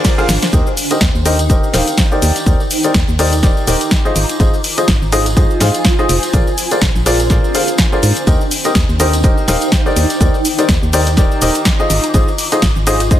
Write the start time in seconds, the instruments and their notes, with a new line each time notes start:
Already playing: ambient pad D4 C5 G#5, upright piano F4 G#4 A#4 C5 D5, violin section A#4 G#5 C6 D6
0.04 kick, snare, closed hi-hat, ride, tambourine, cabasa, shaker
0.18 upright piano F4 G#4 A#4 C5 F5, tambourine, cabasa
0.29 fm bass G#1, snare, open hi-hat, cabasa, shaker
0.42 snare, closed hi-hat, tambourine, cabasa
0.52 fm bass D#2, ambient pad D#4, upright piano D#4 G4 A#4 C5 D#5, kick, closed hi-hat, tambourine, cabasa, shaker
0.67 tambourine, cabasa
0.77 ambient pad G5, open hi-hat, cabasa, shaker
0.91 upright piano D#4 G4 A#4 C5 D#5, closed hi-hat, tambourine, cabasa
1.01 fm bass D#2, kick, snare, closed hi-hat, tambourine, cabasa, shaker
1.15 fm bass D#2, tambourine, cabasa
1.25 upright piano D#4 G4 A#4 C5 D#5, open hi-hat, cabasa, shaker
1.39 closed hi-hat, tambourine, cabasa
1.50 fm bass D#1, upright piano D#4 G4 A#4 C5 D#5, kick, closed hi-hat, tambourine, cabasa, shaker
1.64 tambourine, cabasa
1.73 fm bass D#1, upright piano D#4 G4 A#4 C5 F5, snare, open hi-hat, cabasa, shaker
1.88 closed hi-hat, tambourine, cabasa
1.98 kick, snare, closed hi-hat, cabasa, shaker
2.11 upright piano D#4 G4 A#4 C5 D5, tambourine, cabasa
2.22 fm bass D#2, snare, open hi-hat, cabasa, shaker
2.36 snare, closed hi-hat, tambourine, cabasa
2.46 fm bass D#2, upright piano D#4 G4 A#4 C5 D5, kick, closed hi-hat, tambourine, cabasa, shaker
2.60 tambourine, cabasa
2.70 ambient pad D6, open hi-hat, cabasa, shaker
2.83 upright piano D#4 G4 A#4 C5 D5, ambient pad A#5, closed hi-hat, tambourine, cabasa
2.94 fm bass D#2, kick, snare, closed hi-hat, tambourine, cabasa, shaker
3.08 fm bass D#2, tambourine, cabasa
3.19 upright piano D#4 G4 A#4 C5 D5, open hi-hat, cabasa
3.33 closed hi-hat, tambourine, cabasa
3.43 fm bass D#1, upright piano D#4 G4 A#4 C5 D5, kick, snare, closed hi-hat, tambourine, cabasa, shaker
3.57 tambourine, cabasa
3.67 fm bass D#1, upright piano D#4 G4 A#4 C5 D#5, open hi-hat, cabasa, shaker
3.81 closed hi-hat, tambourine, cabasa
3.91 kick, snare, closed hi-hat, cabasa, shaker
4.05 upright piano D#4 F4 G#4 C5 D#5, tambourine, cabasa
4.16 fm bass G#1, ambient pad F4, open hi-hat, cabasa, shaker
4.29 closed hi-hat, tambourine, cabasa
4.35 ambient pad G#5
4.40 fm bass G#1, upright piano D#4 F4 G#4 C5 D#5, kick, closed hi-hat, tambourine, cabasa, shaker
4.54 ambient pad C5, tambourine, cabasa
4.64 open hi-hat, cabasa, shaker
4.78 upright piano D#4 F4 G#4 C5 D#5, closed hi-hat, tambourine, cabasa
4.88 fm bass G#1, kick, snare, closed hi-hat, tambourine, cabasa, shaker
5.02 fm bass G#1, tambourine, cabasa
5.12 upright piano D#4 F4 G#4 C5 D#5, open hi-hat, cabasa, shaker
5.26 closed hi-hat, tambourine, cabasa
5.37 fm bass G#2, upright piano D#4 F4 G#4 C5 D#5, kick, closed hi-hat, tambourine, cabasa, shaker
5.50 tambourine, cabasa
5.60 fm bass G#2, upright piano D#4 F4 G#4 C5 F5, snare, open hi-hat, cabasa, shaker
5.74 closed hi-hat, tambourine, cabasa
5.84 kick, snare, closed hi-hat, tambourine, cabasa, shaker
5.99 upright piano D#4 F4 G#4 C5 D#5, tambourine, cabasa
6.09 fm bass F1, snare, open hi-hat, cabasa, shaker
6.23 snare, closed hi-hat, tambourine, cabasa
6.33 fm bass A#1, ambient pad D4, upright piano F4 G#4 A#4 C5 D5, kick, closed hi-hat, tambourine, cabasa, shaker
6.47 tambourine, cabasa
6.58 open hi-hat, cabasa, shaker
6.71 upright piano F4 G#4 A#4 C5 D5, closed hi-hat, tambourine, cabasa
6.82 fm bass A#1, kick, snare, closed hi-hat, tambourine, cabasa, shaker
6.95 fm bass A#1, tambourine, cabasa
7.06 upright piano F4 G#4 A#4 C5 D5, open hi-hat, cabasa
7.20 closed hi-hat, tambourine, cabasa
7.30 fm bass A#2, upright piano F4 G#4 A#4 C5 D5, kick, snare, closed hi-hat, tambourine, cabasa, shaker
7.44 tambourine, cabasa
7.55 upright piano F4 G#4 A#4 C5 F5, open hi-hat, cabasa, shaker
7.68 closed hi-hat, tambourine, cabasa
7.78 kick, snare, closed hi-hat, tambourine, cabasa, shaker
7.92 upright piano F4 G#4 A#4 C5 D5, tambourine, cabasa
8.03 fm bass G#2, open hi-hat, cabasa, shaker
8.15 closed hi-hat, tambourine, cabasa
8.27 fm bass D#2, upright piano D#4 G4 A#4 C5 D#5, ambient pad D#4, kick, closed hi-hat, tambourine, cabasa, shaker
8.41 tambourine, cabasa
8.51 open hi-hat, cabasa, shaker
8.56 ambient pad G5
8.64 upright piano D#4 G4 A#4 C5 D#5, closed hi-hat, tambourine, cabasa
8.75 fm bass D#2, kick, snare, closed hi-hat, cabasa, shaker
8.89 fm bass D#2, tambourine, cabasa
9.00 upright piano D#4 G4 A#4 C5 D#5, open hi-hat, cabasa, shaker
9.13 closed hi-hat, tambourine, cabasa
9.23 fm bass D#1, upright piano D#4 G4 A#4 C5 D#5, kick, closed hi-hat, tambourine, cabasa, shaker
9.38 tambourine, cabasa
9.48 fm bass D#1, upright piano D#4 G4 A#4 C5 F5, snare, open hi-hat, cabasa, shaker
9.61 closed hi-hat, tambourine, cabasa
9.72 kick, snare, closed hi-hat, tambourine, cabasa, shaker
9.86 upright piano D#4 G4 A#4 C5 D5, tambourine, cabasa
9.96 fm bass D#2, snare, open hi-hat, cabasa, shaker
10.10 snare, closed hi-hat, tambourine, cabasa
10.15 ambient pad A#5
10.21 fm bass D#2, upright piano D#4 G4 A#4 C5 D5, ambient pad D6, kick, closed hi-hat, tambourine, cabasa, shaker
10.34 tambourine, cabasa
10.45 open hi-hat, cabasa, shaker
10.58 upright piano D#4 G4 A#4 C5 D5, closed hi-hat, tambourine, cabasa
10.69 fm bass D#2, kick, snare, closed hi-hat, tambourine, cabasa, shaker
10.83 fm bass D#2, tambourine, cabasa
10.93 upright piano D#4 G4 A#4 C5 D5, open hi-hat, cabasa
11.07 closed hi-hat, tambourine, cabasa
11.17 fm bass D#1, upright piano D#4 G4 A#4 C5 D5, kick, snare, closed hi-hat, tambourine, cabasa, shaker
11.31 tambourine, cabasa
11.42 fm bass D#1, upright piano D#4 G4 A#4 C5 D#5, open hi-hat, cabasa, shaker
11.54 closed hi-hat, tambourine, cabasa
11.65 kick, snare, closed hi-hat, tambourine, cabasa, shaker
11.79 upright piano D#4 F4 G#4 C5 D#5, tambourine, cabasa
11.90 fm bass G#1, ambient pad F4, open hi-hat, cabasa, shaker
12.04 closed hi-hat, tambourine, cabasa
12.12 fm bass G#1, upright piano D#4 F4 G#4 C5 D#5, ambient pad C5 G#5, kick, closed hi-hat, tambourine, cabasa, shaker
12.28 tambourine, cabasa
12.38 open hi-hat, cabasa, shaker
12.52 upright piano D#4 F4 G#4 C5 D#5, closed hi-hat, tambourine, cabasa
12.62 fm bass G#1, kick, snare, closed hi-hat, tambourine, cabasa, shaker
12.75 fm bass G#1, tambourine, cabasa
12.87 upright piano D#4 F4 G#4 C5 D#5, open hi-hat, cabasa, shaker
13.00 closed hi-hat, tambourine, cabasa
13.11 fm bass G#2, upright piano D#4 F4 G#4 C5 D#5, kick, closed hi-hat, tambourine, cabasa, shaker